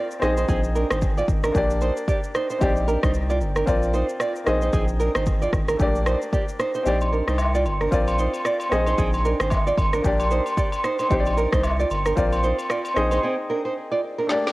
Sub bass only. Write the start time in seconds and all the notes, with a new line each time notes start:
0.22 A#1
0.49 A#1
0.91 G#1
1.28 G#1
1.55 A#1
2.61 A#1
3.03 C2
3.41 G1
3.67 A#1
4.47 A#1
4.73 A#1
5.15 G#1
5.53 G#1
5.79 A#1
6.86 A#1
7.28 C2
7.65 G1
7.92 A#1
8.72 A#1
8.98 A#1
9.40 G#1
9.78 G#1
10.04 A#1
11.11 A#1
11.53 C2
11.90 G1
12.17 A#1
12.96 A#1